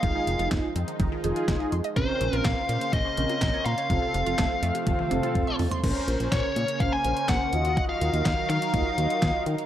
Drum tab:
CC |----------------|----------------|----------------|x---------------|
HH |x-xxx-xxx-xxx-xx|x-xxx-xxx-xxx-xx|x-xxx-xxx-xxx-ox|x-xxx-xxx-xxx-xx|
CP |----x-------x---|----x-------x---|----x-----------|----x-------x---|
SD |----o-------o---|----o-------o---|----o-----------|----o-------o---|
T1 |----------------|----------------|--------oo------|----------------|
T2 |----------------|----------------|----------oo----|----------------|
FT |----------------|----------------|--------------oo|----------------|
BD |o---o---o---o---|o---o---o---o---|o---o---o---o---|o---o---o---o---|

CC |----------------|
HH |x-xxx-xxx-xxx-xx|
CP |----x-------x---|
SD |----o-------o---|
T1 |----------------|
T2 |----------------|
FT |----------------|
BD |o---o---o---o---|